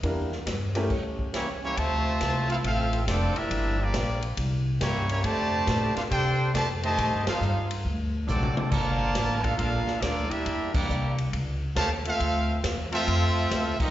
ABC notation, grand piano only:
X:1
M:4/4
L:1/8
Q:"Swing" 1/4=138
K:Dm
V:1 name="Grand piano"
[B,DEGB] z2 [A,^CEGB] z4 | z8 | z8 | z8 |
z8 | z8 | z8 | z8 |]